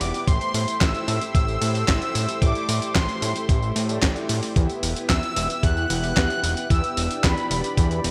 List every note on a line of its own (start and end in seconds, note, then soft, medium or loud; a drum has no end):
0.00 0.12 E1 loud
0.00 0.24 B3 medium
0.00 0.24 B3 loud
0.00 0.24 E4 medium
0.00 4.52 E4 medium
0.00 0.24 G4 medium
0.00 4.52 G4 medium
0.00 0.24 F#5 loud
0.00 0.27 D6 medium
0.00 open hi-hat loud
0.00 tambourine medium
0.14 open hi-hat medium
0.14 tambourine soft
0.27 0.39 A1 loud
0.27 4.52 A3 medium
0.27 1.58 A3 medium
0.27 1.58 E4 medium
0.27 1.58 G4 medium
0.27 4.52 C5 medium
0.27 0.83 C6 loud
0.27 4.52 C6 medium
0.27 kick loud
0.27 closed hi-hat medium
0.27 tambourine soft
0.41 closed hi-hat soft
0.41 tambourine soft
0.54 0.66 A2 medium
0.54 open hi-hat loud
0.54 tambourine medium
0.68 closed hi-hat medium
0.68 tambourine soft
0.81 0.93 A1 medium
0.81 1.34 E6 loud
0.81 kick loud
0.81 snare loud
0.81 clap loud
0.81 closed hi-hat medium
0.81 tambourine soft
0.95 closed hi-hat soft
0.95 tambourine soft
1.08 1.19 A2 medium
1.08 open hi-hat loud
1.08 tambourine medium
1.21 closed hi-hat medium
1.21 tambourine soft
1.35 1.58 A1 medium
1.35 2.43 E6 loud
1.35 kick loud
1.35 closed hi-hat medium
1.35 tambourine soft
1.48 tambourine soft
1.61 1.84 A2 medium
1.61 1.85 A3 medium
1.61 1.85 E4 medium
1.61 1.85 G4 medium
1.61 1.85 C5 loud
1.61 open hi-hat loud
1.61 tambourine medium
1.75 open hi-hat medium
1.75 tambourine soft
1.88 2.00 A1 medium
1.88 2.39 A3 medium
1.88 2.39 E4 medium
1.88 2.39 G4 medium
1.88 2.39 C5 loud
1.88 kick loud
1.88 snare loud
1.88 clap loud
1.88 closed hi-hat medium
1.88 tambourine soft
2.02 closed hi-hat soft
2.02 tambourine soft
2.15 2.27 A2 loud
2.15 open hi-hat loud
2.15 tambourine medium
2.29 closed hi-hat medium
2.29 tambourine soft
2.42 2.53 A1 loud
2.42 3.86 A3 medium
2.42 3.86 E4 medium
2.42 3.86 G4 medium
2.42 3.86 E5 loud
2.42 2.95 D6 loud
2.42 kick loud
2.42 closed hi-hat medium
2.42 tambourine soft
2.55 closed hi-hat soft
2.55 tambourine soft
2.69 2.80 A2 medium
2.69 open hi-hat loud
2.69 tambourine medium
2.82 closed hi-hat medium
2.82 tambourine soft
2.95 3.07 A1 medium
2.95 3.72 C6 medium
2.95 kick loud
2.95 snare loud
2.95 clap loud
2.95 closed hi-hat medium
2.95 tambourine soft
3.09 closed hi-hat soft
3.09 tambourine soft
3.22 3.34 A2 medium
3.22 open hi-hat loud
3.22 tambourine medium
3.36 closed hi-hat medium
3.36 tambourine soft
3.49 3.72 A1 medium
3.49 kick loud
3.49 closed hi-hat medium
3.49 tambourine soft
3.62 tambourine soft
3.76 3.99 A2 medium
3.76 open hi-hat loud
3.76 tambourine medium
3.89 4.53 A3 loud
3.89 4.53 E4 medium
3.89 4.53 G4 medium
3.89 4.53 D5 loud
3.89 closed hi-hat medium
3.89 tambourine soft
4.02 4.14 A1 medium
4.02 kick loud
4.02 snare loud
4.02 clap loud
4.02 closed hi-hat medium
4.02 tambourine soft
4.16 closed hi-hat soft
4.16 tambourine soft
4.29 4.41 A2 medium
4.29 open hi-hat loud
4.29 tambourine medium
4.43 open hi-hat medium
4.43 tambourine soft
4.56 4.68 E2 loud
4.56 8.11 B3 medium
4.56 5.87 B3 medium
4.56 6.68 E4 medium
4.56 5.87 E4 medium
4.56 8.11 G4 medium
4.56 5.87 G4 medium
4.56 5.87 E5 medium
4.56 kick loud
4.56 closed hi-hat medium
4.56 tambourine soft
4.70 closed hi-hat soft
4.70 tambourine soft
4.83 4.94 E1 medium
4.83 open hi-hat loud
4.83 tambourine medium
4.96 closed hi-hat medium
4.96 tambourine soft
5.10 5.21 E2 medium
5.10 5.65 E6 loud
5.10 kick loud
5.10 snare loud
5.10 clap loud
5.10 closed hi-hat medium
5.10 tambourine soft
5.23 closed hi-hat soft
5.23 tambourine soft
5.36 5.48 E1 medium
5.36 open hi-hat loud
5.36 tambourine medium
5.50 closed hi-hat medium
5.50 tambourine soft
5.63 5.86 E2 medium
5.63 6.72 F#6 loud
5.63 kick loud
5.63 closed hi-hat medium
5.63 tambourine soft
5.77 tambourine soft
5.90 6.13 E1 medium
5.90 6.14 B3 medium
5.90 6.14 E4 medium
5.90 6.14 G4 medium
5.90 6.14 E5 loud
5.90 open hi-hat loud
5.90 tambourine medium
6.04 open hi-hat medium
6.04 tambourine soft
6.17 6.28 E2 medium
6.17 6.67 B3 medium
6.17 6.67 E4 medium
6.17 6.67 G4 medium
6.17 6.67 E5 loud
6.17 kick loud
6.17 snare loud
6.17 clap loud
6.17 closed hi-hat medium
6.17 tambourine soft
6.30 closed hi-hat soft
6.30 tambourine soft
6.43 6.55 E1 medium
6.43 open hi-hat loud
6.43 tambourine medium
6.57 closed hi-hat medium
6.57 tambourine soft
6.70 6.82 E2 loud
6.70 8.11 B3 medium
6.70 8.11 D4 medium
6.70 8.11 E4 medium
6.70 8.11 G4 medium
6.70 8.11 G5 loud
6.70 7.26 E6 loud
6.70 kick loud
6.70 closed hi-hat medium
6.70 tambourine soft
6.84 closed hi-hat soft
6.84 tambourine soft
6.97 7.09 E1 medium
6.97 open hi-hat loud
6.97 tambourine medium
7.11 closed hi-hat medium
7.11 tambourine soft
7.24 7.35 E2 medium
7.24 8.11 B5 medium
7.24 kick loud
7.24 snare loud
7.24 clap loud
7.24 closed hi-hat medium
7.24 tambourine soft
7.37 closed hi-hat soft
7.37 tambourine soft
7.51 7.62 E1 medium
7.51 open hi-hat loud
7.51 tambourine medium
7.64 closed hi-hat medium
7.64 tambourine soft
7.77 8.00 E2 medium
7.77 kick loud
7.77 closed hi-hat medium
7.77 tambourine soft
7.91 closed hi-hat soft
7.91 tambourine soft
8.04 8.11 E1 medium
8.04 open hi-hat loud
8.04 tambourine medium